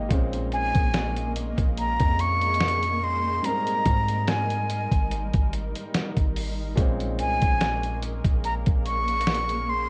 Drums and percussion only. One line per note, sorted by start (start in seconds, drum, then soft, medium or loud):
0.11 kick loud
0.11 closed hi-hat medium
0.33 closed hi-hat soft
0.52 closed hi-hat medium
0.75 kick medium
0.75 closed hi-hat medium
0.94 snare loud
0.94 closed hi-hat medium
1.16 closed hi-hat medium
1.36 closed hi-hat medium
1.58 kick medium
1.58 closed hi-hat soft
1.77 closed hi-hat medium
2.00 kick loud
2.00 closed hi-hat soft
2.19 closed hi-hat medium
2.41 closed hi-hat soft
2.54 closed hi-hat medium
2.61 snare loud
2.68 closed hi-hat medium
2.83 closed hi-hat medium
3.44 closed hi-hat medium
3.67 closed hi-hat medium
3.85 kick loud
3.85 closed hi-hat medium
4.08 closed hi-hat medium
4.27 snare loud
4.27 closed hi-hat medium
4.50 closed hi-hat soft
4.70 closed hi-hat medium
4.91 kick medium
4.91 closed hi-hat medium
5.11 closed hi-hat medium
5.33 kick loud
5.33 closed hi-hat soft
5.53 closed hi-hat medium
5.75 closed hi-hat medium
5.94 snare loud
5.94 closed hi-hat medium
6.17 kick medium
6.17 closed hi-hat soft
6.36 open hi-hat medium
6.77 kick loud
6.77 closed hi-hat medium
7.00 closed hi-hat soft
7.19 closed hi-hat medium
7.42 kick medium
7.42 closed hi-hat medium
7.61 snare loud
7.61 closed hi-hat medium
7.83 closed hi-hat soft
8.03 closed hi-hat medium
8.25 kick loud
8.25 closed hi-hat medium
8.44 closed hi-hat medium
8.66 kick loud
8.66 closed hi-hat soft
8.86 closed hi-hat medium
9.08 closed hi-hat soft
9.21 closed hi-hat medium
9.27 snare loud
9.35 closed hi-hat medium
9.49 closed hi-hat medium